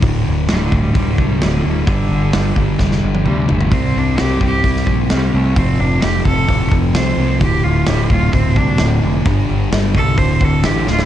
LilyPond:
<<
  \new Staff \with { instrumentName = "Cello" } { \time 4/4 \key d \minor \tempo 4 = 130 r4 \tuplet 3/2 { g8 d8 g8 g8 d8 g8 g8 d8 g8 } | d2 r4 g8 a8 | c'8 d'8 g'8 g'4 r8 g8 a8 | c'8 d'8 g'8 a'4 r8 c''4 |
g'8 f'8 g'8 f'8 c'8 d'8 r4 | r4. a'8 c''8 a'8 g'8 f'8 | }
  \new Staff \with { instrumentName = "Distorted electric guitar" } { \clef bass \time 4/4 \key d \minor <d, a, d>4 <d, a, d>8 <d, a, d>8 <d, a, d>4 <d, a, d>8 <d, a, d>8 | <g, d g>4 <g, d g>8 <g, d g>8 <g, d g>4 <g, d g>8 <g, d g>8 | <c g c'>4 <c g c'>8 <c g c'>8 <c g c'>4 <c g c'>8 <c g c'>8 | <f, c f>4 <f, c f>8 <f, c f>8 <f, c f>4 <f, c f>8 <f, c f>8 |
<d, a, d>4 <d, a, d>8 <d, a, d>8 <d, a, d>4 <d, a, d>8 <d, a, d>8 | <g, d g>4 <g, d g>8 <g, d g>8 <d, a, d>4 <d, a, d>8 <d, a, d>8 | }
  \new Staff \with { instrumentName = "Fingered electric bass" } { \clef bass \time 4/4 \key d \minor d,,8 d,,8 d,,8 d,,8 d,,8 c,8 d,,8 d,,8 | g,,8 g,,8 g,,8 g,,8 f,,8 g,,8 d,8 g,,8 | c,8 c,8 c,8 c,8 c,8 bes,,8 c,8 c,8 | f,,8 f,,8 f,,8 f,,8 d,,8 f,,8 c,8 c,8 |
d,,8 d,,8 d,,8 d,,8 d,,8 c,8 d,,8 f,,8 | g,,8 g,,8 g,,8 c,8 d,,8 d,,8 a,,8 d,,8 | }
  \new DrumStaff \with { instrumentName = "Drums" } \drummode { \time 4/4 <hho bd>4 <hho sn>8 bd8 <hho bd>8 bd8 <hho sn>4 | <hho bd>4 <hho sn>8 bd8 <bd sn>16 sn8 tommh16 toml8 tomfh16 tomfh16 | <hho bd>4 <hho sn>8 bd8 <hho bd>16 sn16 bd8 <hho sn>4 | <hho bd>4 <hho sn>8 bd8 <hho bd>8 bd8 <hho sn>4 |
<hho bd>4 <hho sn>8 bd8 <hho bd>8 bd8 <hho sn>4 | <hho bd>4 <hho sn>8 bd8 <hho bd>8 bd8 <hho sn>8 sn16 sn16 | }
>>